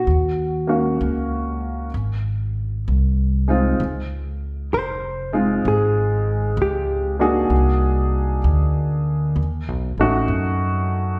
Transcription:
X:1
M:4/4
L:1/8
Q:"Swing" 1/4=64
K:Dblyd
V:1 name="Hollow-body jazz guitar"
_G3 z4 z | z2 c2 A2 G _G- | _G3 z4 z |]
V:2 name="Upright piano"
z [B,D_Gf]3 z3 [A,CEF] | z3 [A,CEF] z3 [B,=DEA]- | [B,=DEA]2 z3 [=A,^C^D^F]3 |]
V:3 name="Upright bass" clef=bass
E,,2 D,,2 A,,,2 C,,2 | D,,2 F,,,2 A,,,2 D,,2 | C,,2 =D,,2 (3^D,, =B,,, =A,,, ^F,,2 |]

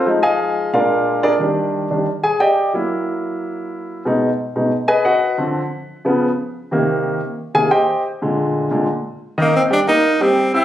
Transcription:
X:1
M:4/4
L:1/8
Q:1/4=181
K:Cdor
V:1 name="Grand piano"
z [_Aef_a]3 [FBdf]3 [DABd] | z4 z [_A_a] [Gdeg]2 | z8 | z4 z [^G=B^d^g] [^FBd^f]2 |
z8 | z4 z [_A_a] [Gceg]2 | z8 | [E,Ee]2 [G,Gg] [B,Bb]2 [G,Gg]2 [=E=e=e'] |]
V:2 name="Grand piano" clef=bass
[F,_A,E]4 [B,,A,D]4 | [E,G,D]3 [E,G,D] z4 | [_G,B,_F]8 | [=B,,^G,^D] z2 [B,,G,D] z4 |
[D,F,C] z3 [_D,F,_C] z3 | [C,E,B,]3 z2 [C,E,B,] z2 | z [B,,D,_A,]3 [B,,D,A,] z3 | z8 |]
V:3 name="Tenor saxophone"
z8 | z8 | z8 | z8 |
z8 | z8 | z8 | B, C D E2 C2 C |]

